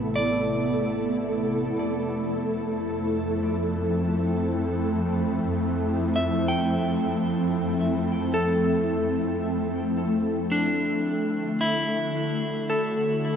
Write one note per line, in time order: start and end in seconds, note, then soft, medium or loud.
0.00 1.73 A1 medium
0.00 1.79 C3 medium
0.00 13.36 A3 medium
0.00 1.78 B3 medium
0.00 13.36 E4 medium
0.00 13.36 A4 medium
0.16 2.30 D5 medium
1.77 10.46 F2 medium
1.77 10.51 F3 medium
2.58 10.51 C4 medium
6.16 8.94 E5 soft
6.48 9.24 G5 medium
8.34 11.02 A4 medium
10.52 13.36 D3 medium
10.52 13.30 D4 medium
11.48 13.36 F#4 medium
11.61 13.36 E4 medium
12.40 13.36 C#5 medium
12.70 13.36 A4 medium